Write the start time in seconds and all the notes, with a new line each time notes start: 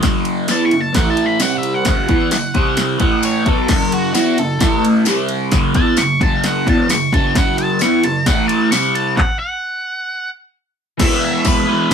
0.02 F#2 C#3 F#3, kick, snare, ride
0.25 ride
0.48 E3 B3 E4 A5, snare, ride, tambourine
0.65 C#6
0.71 F#2 C#3, ride
0.81 A5
0.93 A2 E3 A3 F#5, kick, snare, ride
1.10 A5
1.17 ride
1.26 B5
1.39 C3 G3 C4 F#5, snare, ride, tambourine
1.58 E5
1.63 ride
1.74 F#5
1.84 F#2 C#3 F#3, kick, snare, ride
1.89 F#5
2.08 E3 B3 E4, kick, ride
2.31 F#2 C#3, snare, ride, tambourine
2.54 C3 G3 C4, kick, ride
2.77 snare, ride
2.99 A2 E3 A3 F#5, kick, ride
3.23 C#5, ride, tambourine
3.45 B2 F#3 B3 A4, kick, ride
3.67 F#2 C#3 F#3, kick, snare, crash
3.92 F#4, ride
4.14 E3 B3 E4 F#4, snare, ride, tambourine
4.38 F#2 C#3 A4, ride
4.59 A2 E3 A3, kick, snare, ride
4.85 ride
5.05 C3 G3 C4, snare, ride, tambourine
5.29 ride
5.51 F#2 C#3 F#3, kick, snare, ride
5.74 E3 B3 E4 A5, kick, ride
5.97 F#2 C#3 C#6, snare, ride, tambourine
6.20 F#2 C#3 F#3 A5, kick, ride
6.44 F#5, snare, ride
6.66 E2 B2 E3 A5, kick, ride
6.89 F#2 C#3 C#6, snare, ride, tambourine
7.12 F#2 C#3 F#3 A5, kick, ride
7.35 F#2 C#3 F#3 F#5, kick, snare, ride
7.58 A5, ride
7.79 E3 B3 E4 C#6, snare, ride, tambourine
8.03 F#2 C#3 A5, ride
8.26 A2 E3 A3 F#5, kick, snare, ride
8.48 A5, ride
8.71 C3 G3 C4 C#6, snare, ride, tambourine
8.95 A5, ride
9.17 F#5, kick, clap
9.39 F#5
10.98 E3 G#3 B3 E5, kick, snare, crash
11.03 E4
11.25 E5
11.45 B4, kick, snare, tambourine, crash
11.66 G#3 B3 E4
11.71 E3